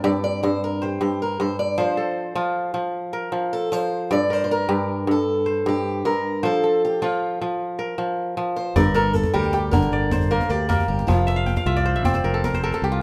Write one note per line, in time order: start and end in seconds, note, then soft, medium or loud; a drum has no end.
0.00 0.42 G2 medium
0.00 1.16 C4 medium
0.00 0.95 D4 medium
0.00 0.73 E4 medium
0.00 0.59 F4 medium
0.00 1.45 G4 medium
0.00 0.93 A#4 medium
0.00 0.57 D5 medium
0.04 0.09 D5 medium
0.24 0.42 D5 medium
0.43 0.99 G2 medium
0.43 0.63 C5 medium
0.64 0.83 A#4 medium
0.82 1.00 G4 medium
0.82 1.77 C5 medium
1.01 1.39 G2 medium
1.01 1.21 G4 medium
1.22 1.41 A#4 medium
1.40 1.83 G2 medium
1.40 1.59 C5 medium
1.59 1.79 D5 medium
1.78 2.34 F3 medium
1.78 2.97 C5 medium
1.78 2.33 C5 medium
1.97 3.19 A4 medium
2.35 2.73 F3 medium
2.35 3.87 F4 medium
2.74 3.31 F3 medium
3.13 4.30 A#4 medium
3.32 3.71 F3 medium
3.53 3.73 A4 medium
3.72 4.15 F3 medium
3.72 4.12 C5 medium
4.11 4.68 G2 medium
4.11 5.22 D5 medium
4.11 4.33 D5 loud
4.30 5.57 A#4 medium
4.30 4.43 C5 medium
4.44 4.50 C5 medium
4.51 5.04 A#4 medium
4.69 5.06 G2 medium
4.69 6.10 G4 medium
5.07 5.65 G2 medium
5.07 5.63 A4 medium
5.46 6.43 C5 medium
5.66 6.04 G2 medium
5.66 6.03 G4 medium
6.05 6.48 G2 medium
6.05 6.41 A#4 medium
6.43 7.01 F3 medium
6.43 6.84 A4 medium
6.43 7.62 C5 medium
6.64 7.85 A4 medium
6.85 7.03 G4 medium
7.02 7.40 F3 medium
7.02 8.53 F4 medium
7.02 8.15 F4 medium
7.42 7.97 F3 medium
7.79 9.01 A#4 medium
7.98 8.36 F3 medium
8.37 8.81 F3 medium
8.56 8.76 C5 medium
8.76 9.23 G1 loud
8.76 11.10 G2 medium
8.76 8.94 A#4 medium
8.76 9.87 D5 medium
8.76 djembe tone medium
8.76 djembe bass medium
8.94 10.27 A4 medium
8.94 9.13 A#4 medium
8.94 djembe slap medium
9.13 9.34 A4 medium
9.13 djembe tone medium
9.24 djembe slap medium
9.24 djembe bass medium
9.34 9.74 D2 medium
9.34 9.78 G3 medium
9.34 9.71 G4 medium
9.34 10.61 A#4 medium
9.43 djembe slap soft
9.43 djembe tone medium
9.53 10.95 G4 medium
9.53 djembe slap medium
9.71 9.88 G1 medium
9.71 11.13 D3 medium
9.71 10.29 A#4 medium
9.71 djembe bass medium
9.82 djembe slap medium
9.82 djembe tone medium
9.92 10.39 G1 medium
9.92 10.50 D5 medium
10.11 11.31 C5 medium
10.11 djembe slap medium
10.11 djembe tone medium
10.20 djembe bass medium
10.31 10.68 A#3 medium
10.31 10.49 A#4 medium
10.31 djembe slap soft
10.41 djembe slap medium
10.41 djembe tone medium
10.49 10.81 D2 medium
10.49 10.87 G4 medium
10.49 11.61 D5 medium
10.69 12.40 A#3 medium
10.69 11.96 A#4 medium
10.69 djembe slap medium
10.69 djembe bass medium
10.80 djembe tone medium
10.88 11.04 G1 medium
10.88 11.06 G4 medium
10.99 djembe slap medium
11.07 11.55 F1 loud
11.07 13.02 F3 medium
11.07 11.81 F4 medium
11.07 djembe tone medium
11.07 djembe bass medium
11.27 11.63 E5 medium
11.27 djembe slap medium
11.36 11.57 F5 medium
11.46 12.39 G5 medium
11.46 djembe tone medium
11.56 12.02 F5 medium
11.56 djembe slap medium
11.56 djembe bass medium
11.66 12.04 C2 medium
11.66 12.91 F4 medium
11.66 11.95 E5 medium
11.76 12.05 D5 medium
11.76 djembe slap soft
11.76 djembe tone medium
11.81 12.20 E4 medium
11.86 12.14 C5 medium
11.96 12.98 E5 medium
12.04 12.20 F1 medium
12.04 13.02 C4 medium
12.04 13.02 D5 medium
12.04 djembe bass medium
12.14 12.54 C5 medium
12.14 djembe slap medium
12.14 djembe tone medium
12.24 12.71 F1 medium
12.24 12.44 A#4 medium
12.34 12.63 A4 medium
12.44 12.63 A#4 medium
12.44 djembe slap medium
12.44 djembe tone medium
12.53 13.02 C5 medium
12.53 djembe bass medium
12.63 12.73 A4 medium
12.63 13.02 A#4 medium
12.63 djembe slap soft
12.73 13.01 A4 medium
12.73 djembe slap soft
12.73 djembe tone soft
12.82 13.02 C2 medium
12.82 13.01 G4 medium
12.92 13.02 F4 medium